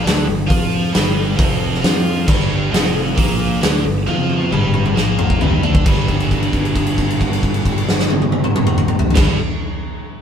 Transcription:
0.03 fingered electric bass D2, overdriven electric guitar D3 D4
0.07 snare, open hi-hat
0.25 fingered electric bass G1, overdriven electric guitar G2
0.47 fingered electric bass F2, overdriven electric guitar F3 F4, kick
0.51 open hi-hat
0.92 fingered electric bass G1, overdriven electric guitar G2 G3, snare, open hi-hat
1.36 fingered electric bass F1, overdriven electric guitar F2 F3, kick
1.40 open hi-hat
1.74 snare
1.81 fingered electric bass F2, overdriven electric guitar F3 F4, snare, open hi-hat
2.27 fingered electric bass G1, overdriven electric guitar G2 G3, kick, crash
2.71 fingered electric bass F1, overdriven electric guitar F2 F3, snare, open hi-hat
2.85 snare
3.15 fingered electric bass A#1, overdriven electric guitar A#2 A#3, kick, open hi-hat
3.61 fingered electric bass D2, overdriven electric guitar D3 D4, snare, open hi-hat
3.84 fingered electric bass G1, overdriven electric guitar G2
4.07 fingered electric bass F2, overdriven electric guitar F3 F4, high tom
4.30 high tom
4.41 high tom
4.51 fingered electric bass G1, overdriven electric guitar G2 G3, mid tom
4.74 mid tom
4.86 mid tom
4.95 fingered electric bass A#1, overdriven electric guitar A#2 A#3, snare
5.19 mid tom
5.30 kick
5.41 fingered electric bass G1, overdriven electric guitar G2 G3, floor tom
5.63 fingered electric bass D2, overdriven electric guitar D3 D4, floor tom
5.75 kick
5.84 fingered electric bass G1, overdriven electric guitar G2 D3, kick, crash
5.88 overdriven electric guitar G3
6.08 kick, crash
6.20 crash
6.31 kick, crash
6.43 crash
6.53 kick, crash
6.65 crash
6.76 kick, crash
6.86 crash
6.98 kick, crash
7.10 crash
7.21 kick, crash
7.33 crash
7.43 kick, crash
7.54 crash
7.66 kick, crash
7.78 crash
7.89 snare
7.99 snare
8.10 high tom
8.22 high tom
8.32 high tom
8.44 mid tom
8.56 mid tom
8.67 mid tom
8.78 mid tom
8.88 mid tom
8.99 floor tom
9.10 floor tom
9.15 fingered electric bass G1, overdriven electric guitar G2 D3, kick, snare, crash
9.19 overdriven electric guitar G3

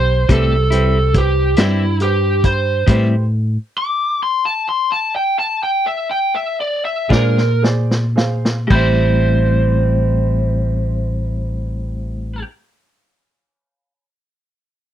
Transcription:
Already playing: fingered electric bass B1, upright piano G4 C5 B5, lead electric guitar C5
0.29 fingered electric bass C2, clean electric guitar A2 G3 C4 E4, upright piano G4 B4 C5, lead electric guitar A4, kick, closed hi-hat
0.70 clean electric guitar G3 C4 E4, upright piano G4 B4 C5, closed hi-hat
1.14 upright piano G4 B4 C5, lead electric guitar G4, kick, closed hi-hat
1.56 fingered electric bass G2, clean electric guitar C4 E4, upright piano G4 B4 D5, snare, closed hi-hat
1.61 clean electric guitar G3, lead electric guitar E4
2.00 upright piano G4 B4 C5, lead electric guitar G4, closed hi-hat
2.44 upright piano G4 C5 B5, lead electric guitar C5, kick, closed hi-hat
2.87 clean electric guitar A2 G3 C4 E4, fingered electric bass A2, upright piano G4 B4 C5, kick, closed hi-hat, crash
3.78 lead electric guitar D6
4.23 lead electric guitar C6
4.45 lead electric guitar A5
4.69 lead electric guitar C6
4.92 lead electric guitar A5
5.16 lead electric guitar G5
5.39 lead electric guitar A5
5.63 lead electric guitar G5
5.87 lead electric guitar E5
6.11 lead electric guitar G5
6.35 lead electric guitar E5
6.61 lead electric guitar D5
6.85 lead electric guitar E5
7.09 fingered electric bass A#2, clean electric guitar G#3 D4 F4, upright piano G#4 C5 D5, lead electric guitar A#4, kick, snare
7.38 snare
7.62 upright piano G#4 C5 D5, snare
7.91 snare
8.16 upright piano G#4 C5 F5, snare
8.45 snare
8.67 fingered electric bass A1, clean electric guitar A2 G3, upright piano G4 B5, kick, crash
8.72 clean electric guitar C4 E4, lead electric guitar C5, upright piano C5

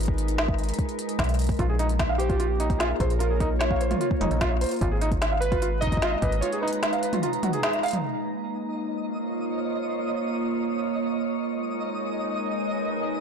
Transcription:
Already playing: fm bass G#1, ambient pad G#3 D#4 A#4 B4
0.01 closed hi-hat
0.03 closed hi-hat
0.06 kick, closed hi-hat
0.18 closed hi-hat
0.28 closed hi-hat
0.38 snare
0.48 kick
0.58 closed hi-hat
0.64 closed hi-hat
0.69 closed hi-hat
0.74 closed hi-hat
0.79 kick, closed hi-hat
0.89 closed hi-hat
0.99 closed hi-hat
1.09 closed hi-hat
1.19 fm bass B1, kick, snare, closed hi-hat
1.24 closed hi-hat
1.29 closed hi-hat
1.34 closed hi-hat
1.39 closed hi-hat
1.42 closed hi-hat
1.44 closed hi-hat
1.47 closed hi-hat
1.49 kick, closed hi-hat
1.52 closed hi-hat
1.54 closed hi-hat
1.57 fm bass A#1, felt piano F4, kick, closed hi-hat
1.59 ambient pad A#3, closed hi-hat
1.69 felt piano G#4
1.79 felt piano D#4, closed hi-hat
1.89 ambient pad F4, closed hi-hat
1.99 kick, snare, closed hi-hat
2.05 ambient pad C#5
2.09 felt piano F5
2.14 synth keys G4, ambient pad A#4
2.20 felt piano C5, closed hi-hat
2.30 felt piano F4, kick, closed hi-hat
2.40 felt piano F4, closed hi-hat
2.60 felt piano D#4, closed hi-hat
2.70 felt piano D#4, kick, closed hi-hat
2.78 felt piano F4, synth keys G#4, snare, closed hi-hat
3.00 fm bass A#1, felt piano C5, kick, closed hi-hat
3.10 closed hi-hat
3.19 felt piano F4, synth keys A#4, closed hi-hat
3.30 felt piano G#4
3.40 felt piano D#4, kick, closed hi-hat
3.59 synth keys C#5, snare, closed hi-hat
3.71 felt piano F5, kick
3.81 felt piano C5, closed hi-hat
3.91 felt piano F4, closed hi-hat, mid tom
4.01 felt piano F4, closed hi-hat
4.11 kick
4.21 fm bass F1, felt piano D#4, closed hi-hat, mid tom
4.31 fm bass A#1, felt piano D#4, closed hi-hat
4.41 felt piano F4, kick, snare, closed hi-hat
4.61 felt piano C5, closed hi-hat
4.64 closed hi-hat
4.66 closed hi-hat
4.69 closed hi-hat
4.71 closed hi-hat
4.76 closed hi-hat
4.79 closed hi-hat
4.81 fm bass G#1, ambient pad G#3, felt piano F4, kick, closed hi-hat
4.91 felt piano G#4
5.01 felt piano D#4, closed hi-hat
5.12 kick, closed hi-hat
5.22 snare, closed hi-hat
5.32 felt piano F5
5.40 ambient pad D#4, synth keys B4, felt piano B4, closed hi-hat
5.52 felt piano F4, kick, closed hi-hat
5.62 felt piano F4, ambient pad A#5, closed hi-hat
5.81 felt piano D#4, synth keys D#5, kick, closed hi-hat
5.85 ambient pad B4, kick
5.92 felt piano D#4, kick, closed hi-hat
5.97 kick
6.02 felt piano F4, snare, closed hi-hat
6.22 fm bass G#1, felt piano B4, kick, closed hi-hat
6.32 closed hi-hat
6.41 felt piano F4, synth keys C#5, closed hi-hat
6.53 felt piano G#4, closed hi-hat
6.61 felt piano D#4, synth keys B4
6.68 closed hi-hat
6.73 closed hi-hat
6.83 snare, closed hi-hat
6.93 felt piano F5, closed hi-hat
7.03 felt piano B4, closed hi-hat
7.13 felt piano F4, closed hi-hat, mid tom
7.23 felt piano F4, closed hi-hat
7.33 closed hi-hat
7.43 felt piano F#4, closed hi-hat, mid tom
7.53 felt piano G#4, closed hi-hat
7.63 felt piano G#4, snare, closed hi-hat
7.73 closed hi-hat
7.83 felt piano F5, closed hi-hat
7.86 closed hi-hat
7.88 closed hi-hat
7.91 closed hi-hat
7.93 closed hi-hat, mid tom
8.03 ambient pad A#3, synth texture D#5
8.56 ambient pad F4
8.77 ambient pad C5 C#5
11.26 ambient pad G#3
11.39 ambient pad D#4 A#4
12.47 ambient pad B4

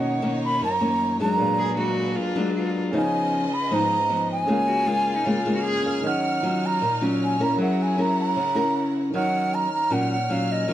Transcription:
Already playing: nylon-string guitar B2 D#3 A#3 C#4, violin section D#4 A#4 C#5, grand piano F#4 A#4 C#5 D#5, flute F#5
0.22 nylon-string guitar D#3 A#3 C#4
0.45 flute B5
0.61 nylon-string guitar F#2, flute A#5
0.80 nylon-string guitar D#3 A#3 C#4
1.20 nylon-string guitar F#3 G#3 D4, flute A#5
1.36 nylon-string guitar A#2, grand piano A#3 D4 G#4 B4, violin section A#3 D4 G#4 B4
1.41 grand piano D5 F5
1.58 cello G#4
1.77 nylon-string guitar F#3 G#3 D4, cello F#4
2.16 cello F4
2.36 nylon-string guitar F#3 G#3 D4
2.56 cello F4
2.91 nylon-string guitar C#3 F3 B3 D#4, grand piano C#4 G#4 B4, violin section C#4 F4 B4 D#5
2.95 grand piano D#5 F5, flute G#5
3.54 flute B5
3.71 nylon-string guitar G#2 F3 B3 D#4, flute A#5
4.09 nylon-string guitar F3 B3 D#4
4.31 flute G#5
4.45 nylon-string guitar C#3 G#3 A#3 F4, violin section A#3 G#4 F6, grand piano C#4 G#4 A#4
4.50 grand piano C#5 F5
4.68 cello F#4
4.87 nylon-string guitar G#3 A#3 F4, cello F4
5.16 cello D#4
5.25 nylon-string guitar C#3 G#3 A#3 F4, cello F4
5.45 nylon-string guitar G#3 A#3 F4
5.55 cello F#4
5.64 cello G#4
5.82 grand piano C#4 G#4 A#4 C#5 F5
6.01 grand piano D#3 A#4, nylon-string guitar D#3 F#3 C#4, violin section D#4 C#5
6.05 grand piano C#5 F6, flute F#5
6.43 nylon-string guitar F#3 C#4 F4
6.66 flute A#5
6.81 nylon-string guitar A#2
7.01 nylon-string guitar F#3 C#4 F4
7.24 flute G#5
7.40 nylon-string guitar C#4 E4 A#4, flute A#5
7.56 grand piano F#3 G#4 A#4, nylon-string guitar F#3, violin section E4 A#4 F#5
7.60 grand piano C#5 E5, flute F#5
7.82 flute G#5
7.98 nylon-string guitar C#4 E4 A#4, flute A#5
8.20 flute A#5
8.36 nylon-string guitar C#3
8.55 nylon-string guitar C#4 E4 A#4
9.10 grand piano D#3 A#4, nylon-string guitar D#3 F#3
9.14 nylon-string guitar C#4, violin section C#4 C#5 F6, grand piano C#5 F6, flute F#5
9.55 flute A#5
9.73 flute A#5
9.90 nylon-string guitar A#2 F#3 C#4 F4, flute F#5
10.12 flute F#5
10.30 nylon-string guitar F#3 C#4 F4, flute F5
10.52 flute D#5
10.68 nylon-string guitar D#3 F#3 C#4 F4

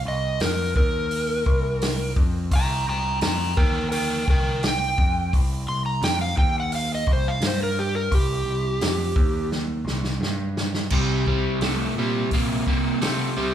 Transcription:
0.05 picked electric bass C2, electric slide guitar D#5
0.40 picked electric bass F2, electric slide guitar A#4, snare, open hi-hat
0.76 picked electric bass D#2, electric slide guitar A#4, kick
1.11 open hi-hat
1.46 picked electric bass C2, kick
1.81 snare, open hi-hat
2.16 picked electric bass F2, kick
2.51 picked electric bass C2, electric slide guitar G5, kick, open hi-hat
2.55 electric slide guitar A#5
2.88 picked electric bass C2, electric slide guitar G5 A#5
3.21 picked electric bass F2, electric slide guitar G5 A#5, snare, open hi-hat
3.57 picked electric bass D#2, electric slide guitar A#4 G5, kick
3.92 electric slide guitar A#4 G5, open hi-hat
4.28 picked electric bass C2, electric slide guitar A#4 G5, kick
4.63 snare, open hi-hat
4.67 electric slide guitar G5
4.98 picked electric bass F2, kick
5.33 picked electric bass C2, kick, open hi-hat
5.69 picked electric bass C2, electric slide guitar C6
5.86 electric slide guitar A#5
6.02 picked electric bass F2, electric slide guitar G5, snare, open hi-hat
6.21 electric slide guitar F5
6.36 picked electric bass D#2, electric slide guitar G5, kick
6.60 electric slide guitar F#5
6.72 electric slide guitar F5, open hi-hat
6.95 electric slide guitar D#5
7.07 picked electric bass C2, kick
7.13 electric slide guitar C5
7.28 electric slide guitar F5
7.41 picked electric bass G2, snare, open hi-hat
7.47 electric slide guitar C5
7.63 electric slide guitar A#4
7.79 electric slide guitar G4
7.95 electric slide guitar A#4
8.11 picked electric bass C2, electric slide guitar G4, kick, open hi-hat
8.45 picked electric bass C2
8.81 picked electric bass F2, snare, open hi-hat
9.16 picked electric bass D#2, kick
9.52 snare
9.85 picked electric bass C2, snare
10.04 snare
10.21 picked electric bass G2, snare
10.57 snare
10.74 snare
10.90 picked electric bass C2, overdriven electric guitar C3 G3, kick, crash
11.26 overdriven electric guitar C3 G3, kick
11.60 picked electric bass C2, overdriven electric guitar C3, snare, open hi-hat
11.64 overdriven electric guitar A3
11.96 picked electric bass A#2, overdriven electric guitar C3 G3
12.31 picked electric bass A#1, overdriven electric guitar C3 A#3, kick, open hi-hat
12.67 picked electric bass C2, overdriven electric guitar C3 A#3, kick
13.01 picked electric bass C3, overdriven electric guitar C3 A3, snare, open hi-hat
13.37 picked electric bass C2, overdriven electric guitar C3 G3

